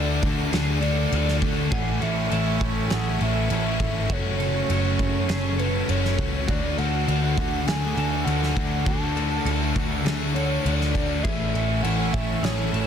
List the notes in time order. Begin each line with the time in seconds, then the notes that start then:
Already playing: D2 D3 A3 D4 F#4 A4 D5 F#5 D6
0.23 D2 D3 A3 D4 F#4 A4, kick, crash
0.52 D2 D3 A3 D4 F#4 G#4 A4, snare, crash
0.80 D3 A3 D4 F#4 A4 D5, crash
1.12 D2 D3 A3 D4 F#4 A4, crash
1.28 snare
1.42 D2 D3 A3 D4 F#4 A4, kick, crash
1.71 A1 A2 E3 A3 C#4 E4 G#4 E5 F#5 C#6, kick, crash
2.01 A1 A2 E3 A3 C#4 E4 A4 E5, crash
2.30 A1 A2 E3 A3 C#4 E4 A4, crash
2.61 A1 A2 E3 A3 C#4 E4, kick, crash
2.90 A1 A2 E3 A3 C#4 E4 G#4 F#5, snare, crash
3.20 A1 A2 E3 A3 C#4 E4 A4 E5, crash
3.50 A1 A2 E3 A3 C#4 E4 E5, crash
3.80 G#1 A2 E3 A3 C#4 E4, kick, crash
4.09 F#1 F#2 C#3 F#3 A3 C#4 F#4 C#5 F#5, kick, crash
4.39 F#3 A3 C#4 F#4 A4, crash
4.69 F#1 F#2 C#3 F#3 A3 C#4 F#4 A4, crash
4.99 F#1 F#3 A3 C#4 F#4, kick, crash
5.29 F#1 F#2 C#3 F#3 A3 C#4 F#4 G#4, snare, crash
5.58 C#3 F#3 A3 C#4 F#4 A4 B4, crash
5.87 F#1 F#2 C#3 F#3 A3 C#4 F#4 C#5, crash
6.05 snare
6.18 C#2 C#3 F#3 A3 C#4 F#4, kick, crash
6.47 D2 D3 A3 D4 F#4 A4 D5 D6, kick, crash
6.77 D2 D3 A3 D4 F#4 A4 F#5, crash
7.08 D2 D3 A3 D4 F#4 A4, crash
7.37 D2 D3 A3 D4 F#4, kick, crash
7.67 D2 D3 A3 D4 F#4 G#4 G#5, snare, crash
7.97 D2 D3 A3 D4 F#4 A4, crash
8.24 D2 D3 A3 D4 F#5, crash
8.28 F#4
8.43 snare
8.56 D2 D3 A3 D4 F#4, kick, crash
8.86 D2 D3 A3 D4 F#4 A5 E6, kick, crash
9.16 D3 A3 D4 F#4 A4, crash
9.45 D2 D3 A3 D4 F#4 A4, crash
9.75 D2 D3 A3 D4 F#4, kick, crash
10.05 D2 D3 A3 D4 F#4 G#4, snare, crash
10.34 D3 A3 D4 F#4 A4 C#5, crash
10.63 D2 D3 A3 D4 F#4 C#5, crash
10.74 D5
10.81 snare
10.95 D2 D3 A3 D4 F#4, kick, crash
11.23 A1 A2 E3 A3 C#4 E4 G#4 A4 E5 C#6, kick, crash
11.53 A1 A2 E3 A3 C#4 E4 A4 E5, crash
11.82 A1 A2 E3 A3 A4 F#5, crash
11.86 C#4 E4
12.13 A1 A2 E3 A3 C#4 E4 E5, kick, crash
12.43 A1 A2 E3 A3 C#4 E4 G#4 C#5, snare, crash
12.73 A1 A2 E3 A3 C#4 E4 A4, crash